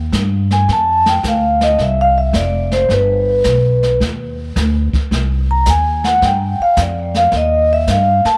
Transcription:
0.00 0.10 D#2 medium
0.12 0.66 G2 medium
0.12 kick soft
0.12 snare medium
0.12 hi-hat pedal medium
0.51 0.69 G#5 medium
0.51 snare soft
0.68 1.21 F2 medium
0.68 brush sweep soft
0.68 kick soft
0.68 snare soft
0.73 1.07 A5 loud
1.06 1.24 G5 medium
1.06 snare medium
1.23 1.77 D2 medium
1.23 kick soft
1.23 snare medium
1.23 hi-hat pedal medium
1.28 1.62 F5 medium
1.61 1.79 D#5 medium
1.61 snare soft
1.78 2.32 C2 medium
1.78 brush sweep soft
1.78 kick soft
1.78 snare soft
1.82 1.98 E5 medium
2.01 2.17 F5 medium
2.18 2.35 E5 medium
2.33 2.87 F1 medium
2.33 2.71 D5 medium
2.33 kick soft
2.33 snare medium
2.33 hi-hat pedal medium
2.71 2.90 C5 medium
2.71 snare soft
2.89 3.43 G1 medium
2.89 3.98 B4 medium
2.89 brush sweep soft
2.89 kick soft
2.89 snare soft
3.44 3.98 B1 medium
3.44 kick soft
3.44 snare medium
3.44 hi-hat pedal medium
3.83 snare soft
4.00 4.54 D#2 medium
4.00 brush sweep soft
4.00 kick soft
4.00 snare soft
4.56 4.91 D2 loud
4.56 kick soft
4.56 snare medium
4.56 hi-hat pedal soft
4.93 muted upright bass stroke soft
4.93 kick medium
4.93 snare soft
5.11 5.65 C2 medium
5.11 brush sweep medium
5.11 kick soft
5.11 snare soft
5.51 5.67 A#5 medium
5.66 6.20 D#2 medium
5.66 kick soft
5.66 snare medium
5.66 hi-hat pedal medium
5.70 6.04 G#5 medium
6.04 6.22 F#5 medium
6.04 snare soft
6.22 6.57 G2 medium
6.22 6.60 G5 loud
6.22 brush sweep soft
6.22 kick soft
6.22 snare soft
6.59 6.78 F5 medium
6.59 muted upright bass stroke soft
6.76 7.31 F2 loud
6.76 kick soft
6.76 snare medium
6.76 hi-hat pedal medium
6.82 7.16 D5 medium
7.14 7.33 F5 loud
7.14 snare soft
7.32 7.86 D#2 medium
7.32 brush sweep soft
7.32 kick soft
7.32 snare soft
7.37 7.71 D#5 medium
7.73 7.89 E5 medium
7.87 8.23 G2 medium
7.87 8.26 F5 medium
7.87 kick soft
7.87 snare medium
7.87 hi-hat pedal medium
8.25 8.38 A5 loud
8.25 muted upright bass stroke soft
8.25 snare soft

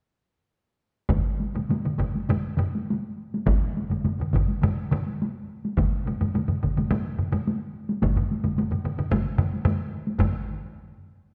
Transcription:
1.09 taiko medium
1.09 taiko low-mid medium
1.09 taiko mid medium
1.09 taiko high medium
1.40 taiko high medium
1.55 taiko low-mid medium
1.55 taiko mid medium
1.55 taiko high soft
1.69 taiko low-mid medium
1.69 taiko mid medium
1.69 taiko high medium
1.85 taiko low-mid medium
1.85 taiko mid medium
1.98 taiko medium
1.98 taiko low-mid medium
1.98 taiko mid medium
2.15 taiko high soft
2.29 taiko low-mid medium
2.29 taiko mid medium
2.29 taiko high medium
2.57 taiko low-mid medium
2.57 taiko mid medium
2.75 taiko high medium
2.90 taiko high medium
3.34 taiko high medium
3.46 taiko medium
3.46 taiko low-mid medium
3.46 taiko mid medium
3.46 taiko high medium
3.77 taiko high medium
3.90 taiko low-mid medium
3.90 taiko mid medium
3.90 taiko high medium
4.04 taiko low-mid soft
4.04 taiko mid medium
4.04 taiko high medium
4.19 taiko low-mid medium
4.19 taiko mid medium
4.33 taiko medium
4.33 taiko low-mid medium
4.33 taiko mid medium
4.48 taiko high soft
4.62 taiko low-mid medium
4.62 taiko mid medium
4.62 taiko high medium
4.91 taiko low-mid medium
4.91 taiko mid medium
5.07 taiko high soft
5.22 taiko high medium
5.65 taiko high medium
5.77 taiko medium
5.77 taiko low-mid medium
5.77 taiko mid medium
5.77 taiko high medium
6.06 taiko low-mid medium
6.06 taiko mid medium
6.06 taiko high soft
6.21 taiko low-mid medium
6.21 taiko mid medium
6.21 taiko high soft
6.34 taiko low-mid medium
6.34 taiko mid medium
6.34 taiko high medium
6.48 taiko low-mid medium
6.48 taiko mid medium
6.63 taiko medium
6.63 taiko low-mid medium
6.63 taiko mid medium
6.77 taiko low-mid medium
6.77 taiko mid medium
6.77 taiko high medium
6.91 taiko low-mid medium
6.91 taiko mid medium
6.91 taiko high medium
7.19 taiko low-mid medium
7.19 taiko mid medium
7.32 taiko low-mid medium
7.32 taiko mid medium
7.32 taiko high soft
7.47 taiko high medium
7.89 taiko high medium
8.02 taiko medium
8.02 taiko low-mid medium
8.02 taiko mid medium
8.02 taiko high medium
8.16 taiko low-mid medium
8.16 taiko mid medium
8.31 taiko high medium
8.43 taiko low-mid medium
8.43 taiko mid medium
8.43 taiko high medium
8.57 taiko low-mid medium
8.57 taiko mid medium
8.57 taiko high medium
8.71 taiko low-mid medium
8.71 taiko mid medium
8.84 taiko low-mid medium
8.84 taiko mid medium
8.98 taiko low-mid medium
8.98 taiko mid medium
9.11 taiko medium
9.11 taiko low-mid medium
9.11 taiko mid medium
9.11 taiko high medium
9.38 taiko low-mid medium
9.38 taiko mid medium
9.54 taiko high medium
9.65 taiko low-mid medium
9.65 taiko mid medium
9.65 taiko high medium
10.07 taiko high medium
10.19 taiko medium
10.19 taiko low-mid medium
10.19 taiko mid medium
10.19 taiko high medium

